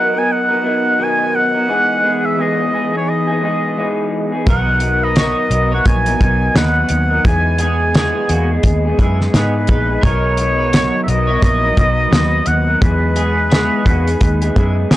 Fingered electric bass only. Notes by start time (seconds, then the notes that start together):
4.47 B1
5.50 B1
5.86 A#1
6.21 B1
6.55 D#2
6.90 D#2
7.25 E2
8.30 E2
8.64 D#2
8.99 F#2
9.35 G#2
9.69 A#1
10.03 B1
11.08 B1
11.43 A#1
11.77 B1
12.12 D#2
12.47 D#2
12.81 E2
13.86 E2
14.21 D#2
14.56 F#2
14.91 muted fingered electric bass stroke